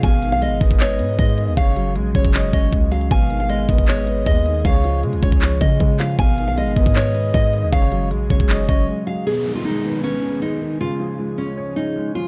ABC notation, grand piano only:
X:1
M:4/4
L:1/8
Q:1/4=156
K:G#dor
V:1 name="Grand piano" clef=bass
B,, D, G, B, B B, G, D, | C, F, G, C c C G, F, | B,, D, G, B, B B, G, D, | C, E, G, C c C G, E, |
B,, D, G, B, B B, G, D, | C, F, G, C c C G, F, | B,, D, G, B, B B, G, D, | C, E, G, C c C G, E, |]